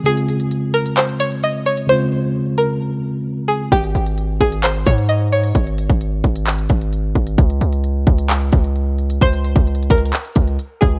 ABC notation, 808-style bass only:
X:1
M:4/4
L:1/16
Q:1/4=131
K:Dblyd
V:1 name="808-style bass" clef=bass
z16 | z16 | A,,,2 A,,,4 A,,,4 A,,6 | A,,,3 A,,,3 A,,,4 A,,,4 A,,,2 |
D,,2 D,,4 D,,4 D,,6 | D,,3 D,,3 D,,2 z2 D,,2 z2 D,,2 |]